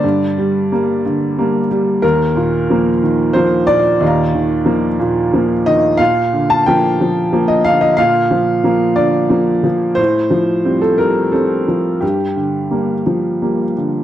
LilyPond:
<<
  \new Staff \with { instrumentName = "Upright piano" } { \time 3/4 \key g \minor \tempo 4 = 90 << { r2. | r2. | <ees'' f'' bes''>2. | r2. |
r2. | r2. | r2. | } \\ { d''2~ d''8 r8 | bes'2 c''8 d''8~ | d''2~ d''8 ees''8 | f''8. a''16 g''4~ g''16 ees''16 f''16 ees''16 |
f''4. d''4 r8 | c''4~ c''16 a'16 bes'8 a'4 | g'2~ g'8 r8 | } >> }
  \new Staff \with { instrumentName = "Upright piano" } { \clef bass \time 3/4 \key g \minor <g, d>8 g8 <g bes>8 d8 <g bes>8 g8 | ees,8 bes,8 <f bes>8 ees8 <f bes>8 bes,8 | ees,8 ees8 <f bes>8 bes,8 <f bes>8 ees8 | bes,8 d8 <f bes>8 f8 <f bes>8 d8 |
bes,8 f8 <f bes>8 d8 <f bes>8 f8 | a,8 f8 <g c'>8 g8 <g c'>8 f8 | g,8 d8 <g bes>8 f8 <g bes>8 d8 | }
>>